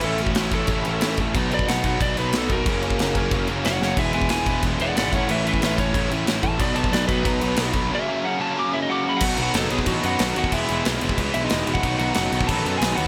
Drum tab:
CC |x-x-x-x-x-x-x-x-|x-x-x-x-x-x-x-x-|x-x-x-x-x-x-x---|x-x-x-x-x-x-x-x-|
SD |----o-------o---|----o-------o---|----o-------o-o-|----o-------o---|
BD |---o--o-o-----o-|o--o--o-o-----o-|o--o--o-o-------|o--o--o-o-----o-|

CC |x-x-x-x-x-x-x-x-|x-x-x-x-x-x-x-x-|----------------|x-x-x-x-x-x-x-x-|
SD |----o-------o---|----o-------o---|----------------|----o-------o---|
BD |---o--o-o-----o-|o--o--o-o-----o-|----------------|o------oo------o|

CC |x-x-x-x-x-x-x-x-|x-x-x-x-x-x-x-x-|
SD |----o-------o---|----o-------o---|
BD |o------oo------o|o------oo-------|